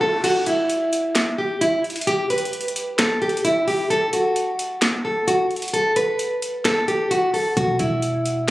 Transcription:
Already playing: string section D2 D3 B3 F#4, riser
0.01 nylon-string guitar A4
0.24 nylon-string guitar F#4, closed hi-hat, crash
0.46 nylon-string guitar E4, closed hi-hat
0.70 closed hi-hat
0.93 closed hi-hat
1.15 snare, closed hi-hat
1.38 nylon-string guitar G4
1.61 nylon-string guitar E4, closed hi-hat
1.84 closed hi-hat
1.90 closed hi-hat
1.96 closed hi-hat
2.01 closed hi-hat
2.07 nylon-string guitar G4, closed hi-hat
2.30 nylon-string guitar B4, closed hi-hat
2.38 closed hi-hat
2.45 closed hi-hat
2.53 closed hi-hat
2.61 closed hi-hat
2.68 closed hi-hat
2.76 closed hi-hat
2.98 nylon-string guitar A4, snare, closed hi-hat
3.22 nylon-string guitar G4, closed hi-hat
3.29 closed hi-hat
3.37 closed hi-hat
3.45 nylon-string guitar E4, closed hi-hat
3.68 nylon-string guitar G4, open hi-hat
3.90 nylon-string guitar A4, closed hi-hat
4.13 nylon-string guitar F#4, closed hi-hat
4.36 closed hi-hat
4.59 closed hi-hat
4.82 snare, closed hi-hat
5.05 nylon-string guitar A4
5.28 nylon-string guitar F#4, closed hi-hat
5.51 closed hi-hat
5.56 closed hi-hat
5.62 closed hi-hat
5.68 closed hi-hat
5.74 nylon-string guitar A4, closed hi-hat
5.96 nylon-string guitar B4, closed hi-hat
6.19 closed hi-hat
6.42 closed hi-hat
6.65 nylon-string guitar A4, snare, closed hi-hat
6.88 nylon-string guitar G4, closed hi-hat
7.11 nylon-string guitar F#4, closed hi-hat
7.34 nylon-string guitar A4, open hi-hat
7.57 808-style bass E1, nylon-string guitar F#4, kick, closed hi-hat
7.79 808-style bass E1, nylon-string guitar E4, kick, closed hi-hat
8.02 closed hi-hat
8.26 closed hi-hat

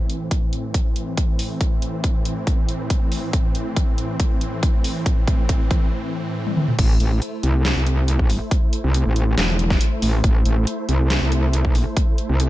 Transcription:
Already playing: supersaw synth A2 E3 C4
0.10 closed hi-hat
0.31 kick, closed hi-hat
0.53 closed hi-hat
0.74 kick, closed hi-hat
0.96 closed hi-hat
1.17 kick, closed hi-hat
1.39 open hi-hat
1.61 kick, closed hi-hat
1.82 closed hi-hat
2.04 kick, closed hi-hat
2.25 closed hi-hat
2.47 kick, closed hi-hat
2.69 closed hi-hat
2.90 kick, closed hi-hat
3.12 open hi-hat
3.33 kick, closed hi-hat
3.55 closed hi-hat
3.76 kick, closed hi-hat
3.98 closed hi-hat
4.20 kick, closed hi-hat
4.41 closed hi-hat
4.63 kick, closed hi-hat
4.84 open hi-hat
5.06 kick, closed hi-hat
5.28 kick, closed hi-hat
5.49 kick, closed hi-hat
5.71 kick, closed hi-hat
6.47 high tom
6.57 mid tom
6.68 mid tom
6.79 wobble bass A1, supersaw synth A3 E4 C5, kick, closed hi-hat, crash
7.00 wobble bass A1, closed hi-hat
7.22 closed hi-hat
7.43 wobble bass C2, closed hi-hat
7.65 snare, closed hi-hat
7.76 wobble bass C2
7.87 closed hi-hat
8.08 closed hi-hat
8.19 kick
8.30 open hi-hat
8.51 kick, closed hi-hat
8.73 closed hi-hat
8.84 wobble bass C2
8.94 closed hi-hat
9.06 wobble bass A1
9.16 closed hi-hat
9.38 wobble bass E1, snare, closed hi-hat
9.59 closed hi-hat
9.70 kick, snare
9.81 closed hi-hat
10.02 wobble bass A1, open hi-hat
10.24 wobble bass A1, kick, closed hi-hat
10.46 wobble bass A1, closed hi-hat
10.67 closed hi-hat
10.89 wobble bass C2, closed hi-hat
11.10 snare, closed hi-hat
11.22 wobble bass C2
11.32 closed hi-hat
11.53 closed hi-hat
11.65 wobble bass B1, kick
11.75 open hi-hat
11.97 kick, closed hi-hat
12.18 closed hi-hat
12.29 wobble bass C2
12.40 closed hi-hat

